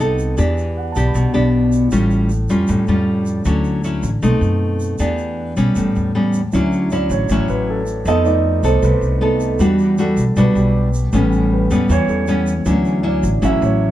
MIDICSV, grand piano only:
0, 0, Header, 1, 2, 480
1, 0, Start_track
1, 0, Key_signature, 2, "major"
1, 0, Tempo, 383632
1, 474, Time_signature, 4, 2, 24, 8
1, 17404, End_track
2, 0, Start_track
2, 0, Title_t, "Grand piano"
2, 0, Program_c, 0, 0
2, 736, Control_c, 0, 64, 127
2, 964, Note_on_c, 0, 78, 45
2, 1153, Note_on_c, 0, 81, 36
2, 1338, Note_on_c, 0, 83, 35
2, 2283, Note_off_c, 0, 78, 0
2, 2412, Control_c, 0, 64, 0
2, 2437, Note_off_c, 0, 81, 0
2, 2590, Note_off_c, 0, 83, 0
2, 8163, Note_on_c, 0, 54, 43
2, 8168, Note_on_c, 0, 61, 37
2, 8173, Note_on_c, 0, 64, 48
2, 8371, Control_c, 0, 64, 127
2, 8672, Note_on_c, 0, 74, 53
2, 8890, Note_off_c, 0, 74, 0
2, 8902, Note_on_c, 0, 73, 60
2, 9338, Note_off_c, 0, 73, 0
2, 9378, Note_on_c, 0, 71, 61
2, 9602, Note_off_c, 0, 71, 0
2, 9633, Note_on_c, 0, 69, 52
2, 9850, Note_off_c, 0, 69, 0
2, 10032, Note_off_c, 0, 54, 0
2, 10034, Note_off_c, 0, 61, 0
2, 10036, Note_off_c, 0, 64, 0
2, 10098, Control_c, 0, 64, 0
2, 10110, Note_on_c, 0, 75, 76
2, 10308, Note_on_c, 0, 57, 36
2, 10314, Note_on_c, 0, 59, 35
2, 10323, Control_c, 0, 64, 127
2, 10323, Note_on_c, 0, 63, 43
2, 10329, Note_off_c, 0, 75, 0
2, 10329, Note_on_c, 0, 74, 57
2, 10771, Note_off_c, 0, 74, 0
2, 10817, Note_on_c, 0, 72, 53
2, 10998, Note_off_c, 0, 57, 0
2, 11001, Note_off_c, 0, 59, 0
2, 11005, Note_off_c, 0, 63, 0
2, 11042, Note_off_c, 0, 72, 0
2, 11063, Note_on_c, 0, 71, 63
2, 11200, Note_off_c, 0, 71, 0
2, 11520, Note_on_c, 0, 57, 37
2, 11526, Note_on_c, 0, 59, 34
2, 11529, Note_on_c, 0, 63, 37
2, 11736, Note_off_c, 0, 57, 0
2, 11739, Note_off_c, 0, 59, 0
2, 11741, Note_off_c, 0, 63, 0
2, 12006, Note_on_c, 0, 55, 43
2, 12009, Note_on_c, 0, 62, 42
2, 12014, Control_c, 0, 64, 0
2, 12016, Note_on_c, 0, 66, 49
2, 12255, Control_c, 0, 64, 127
2, 12322, Note_off_c, 0, 55, 0
2, 12324, Note_off_c, 0, 62, 0
2, 12328, Note_off_c, 0, 66, 0
2, 12518, Note_on_c, 0, 69, 57
2, 12946, Note_off_c, 0, 69, 0
2, 12998, Note_on_c, 0, 71, 64
2, 13212, Note_off_c, 0, 71, 0
2, 13214, Note_on_c, 0, 67, 44
2, 13877, Note_off_c, 0, 67, 0
2, 13922, Note_on_c, 0, 55, 46
2, 13926, Note_on_c, 0, 59, 40
2, 13935, Note_on_c, 0, 61, 49
2, 13938, Control_c, 0, 64, 0
2, 14193, Control_c, 0, 64, 127
2, 14431, Note_on_c, 0, 71, 54
2, 14604, Note_off_c, 0, 55, 0
2, 14607, Note_off_c, 0, 59, 0
2, 14611, Note_off_c, 0, 61, 0
2, 14863, Note_off_c, 0, 71, 0
2, 14908, Note_on_c, 0, 73, 75
2, 15125, Note_on_c, 0, 69, 45
2, 15126, Note_off_c, 0, 73, 0
2, 15792, Note_off_c, 0, 69, 0
2, 15835, Note_on_c, 0, 52, 41
2, 15841, Note_on_c, 0, 54, 40
2, 15850, Note_on_c, 0, 61, 45
2, 15853, Control_c, 0, 64, 0
2, 16062, Control_c, 0, 64, 127
2, 16348, Note_on_c, 0, 74, 50
2, 16521, Note_off_c, 0, 52, 0
2, 16524, Note_off_c, 0, 54, 0
2, 16528, Note_off_c, 0, 61, 0
2, 16781, Note_off_c, 0, 74, 0
2, 16794, Note_on_c, 0, 52, 35
2, 16798, Note_on_c, 0, 54, 33
2, 16805, Note_on_c, 0, 61, 40
2, 16827, Note_on_c, 0, 76, 70
2, 17012, Note_off_c, 0, 52, 0
2, 17014, Note_off_c, 0, 54, 0
2, 17018, Note_off_c, 0, 61, 0
2, 17046, Note_off_c, 0, 76, 0
2, 17056, Note_on_c, 0, 73, 56
2, 17404, Note_off_c, 0, 73, 0
2, 17404, End_track
0, 0, End_of_file